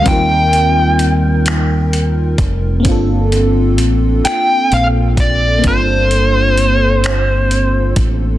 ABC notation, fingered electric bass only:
X:1
M:6/8
L:1/8
Q:3/8=43
K:Gm
V:1 name="Fingered electric bass" clef=bass
E,,4- E,, F,,, | G,,,2 A,,, z B,,,2 | G,,,4- G,,, A,,, |]